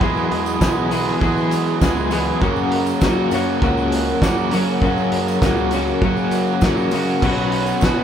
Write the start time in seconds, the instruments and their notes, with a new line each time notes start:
0.01 picked electric bass E2, overdriven electric guitar E2 B2 E3 G#3 B3 G#4, clean electric guitar F#3 E4, kick, tambourine
0.17 tambourine
0.31 picked electric bass E2, open hi-hat, tambourine
0.46 tambourine
0.61 picked electric bass B1, overdriven electric guitar E2 B2 E3 G#3 B3 G#4, clean electric guitar F#3 E4, kick, snare, tambourine
0.90 overdriven electric guitar E2 B2 E3 G#3 B3 G#4, clean electric guitar F#3 E4, open hi-hat, tambourine
1.08 snare
1.21 overdriven electric guitar E2 B2 E3 G#3 B3 G#4, picked electric bass E3, clean electric guitar F#3 E4, kick, tambourine
1.37 tambourine
1.51 open hi-hat, tambourine
1.67 tambourine
1.81 picked electric bass C#2, overdriven electric guitar E2 B2 E3 G#3 B3 G#4, clean electric guitar F#3 E4, kick, snare, tambourine
1.97 tambourine
2.11 overdriven electric guitar E2 B2 E3 G#3 B3 G#4, clean electric guitar F#3 E4, open hi-hat, tambourine
2.41 overdriven electric guitar F#2 C#3 F#3 A#3 C#4 F#4, picked electric bass F#2, kick, tambourine
2.56 tambourine
2.72 open hi-hat, tambourine
2.86 tambourine
3.01 overdriven electric guitar F#2 C#3 F#3 A#3 C#4 F#4, picked electric bass F#3, kick, snare, tambourine
3.31 picked electric bass F#2, overdriven electric guitar F#2 C#3 F#3 A#3 C#4 F#4, open hi-hat, tambourine
3.62 picked electric bass C#2, overdriven electric guitar F#2 C#3 F#3 A#3 C#4 F#4, kick, tambourine
3.78 tambourine
3.92 open hi-hat, tambourine
4.08 tambourine
4.22 picked electric bass F#2, overdriven electric guitar F#2 C#3 F#3 A#3 C#4 F#4, kick, snare, tambourine
4.38 tambourine
4.51 overdriven electric guitar F#2 C#3 F#3 A#3 C#4, picked electric bass F#3, open hi-hat, tambourine
4.55 overdriven electric guitar F#4
4.82 picked electric bass F#2, overdriven electric guitar F#2 C#3 F#3 A#3 C#4 F#4, kick, tambourine
4.98 tambourine
5.12 picked electric bass F#2, open hi-hat, tambourine
5.28 tambourine
5.42 picked electric bass C#2, overdriven electric guitar F#2 C#3 F#3 A#3 C#4 F#4, kick, snare, tambourine
5.57 tambourine
5.71 overdriven electric guitar F#2 C#3 F#3, open hi-hat, tambourine
5.75 overdriven electric guitar A#3 C#4 F#4
5.88 tambourine
6.02 overdriven electric guitar F#2 C#3 F#3 A#3 C#4 F#4, picked electric bass F#3, kick, tambourine
6.17 tambourine
6.31 open hi-hat, tambourine
6.47 tambourine
6.61 picked electric bass F#2, overdriven electric guitar F#2 C#3 F#3 A#3 C#4, kick, snare, tambourine
6.65 overdriven electric guitar F#4
6.77 tambourine
6.91 overdriven electric guitar F#2 C#3 F#3 A#3 C#4 F#4, open hi-hat, tambourine
7.07 tambourine
7.22 picked electric bass B1, overdriven electric guitar B2 F#3 B3 C#4 F#4, tonewheel organ F#4 C#5 B5, kick, crash, tambourine
7.37 tambourine
7.52 open hi-hat, tambourine
7.66 tambourine
7.81 overdriven electric guitar B2 F#3 B3 C#4, picked electric bass B2, kick, snare, tambourine
7.85 overdriven electric guitar F#4